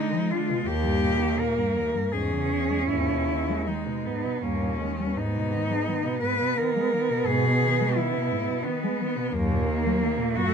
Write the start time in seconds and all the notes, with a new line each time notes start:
Already playing: D3 G#3 D#4
0.14 F3
0.31 D3 F4
0.50 B2
0.67 D#2 A#3 G4
0.85 G2
1.03 A#2
1.21 D#3
1.39 A#2 A#4
1.57 G2
1.75 D#2
1.94 G2
2.12 E2 G#2 C#4 G#4
2.32 C#3
2.50 E3
2.70 G#3
2.88 D#2 G#2 E4
3.10 B2
3.30 D#3
3.49 G#3
3.67 D#3 G#3 D#4
3.88 B2
4.05 G#2 B3
4.25 B2
4.42 D#2 G2 A#3 C#4
4.62 A#2
4.80 D#3 G#3
4.99 G3
5.17 G#2 B3 D#4
5.36 B2
5.54 D#3
5.70 G#3
5.88 D#3
6.06 B2
6.22 G#2 B4
6.41 B2
6.57 D#3 A#4
6.76 G#3
6.93 D#3
7.11 B2
7.26 G#2 B2 G#4
7.45 B2
7.63 D#3
7.81 G#3
7.96 D#3 E4
8.15 B2
8.32 G#2
8.49 B2
8.64 D#3 B3
8.83 G#3
9.01 D#3
9.17 B2
9.33 D#2 F#2 A#3
9.51 A#2
9.68 D#3
9.86 F#3
10.02 D#3
10.19 A#2
10.35 F#2 F#4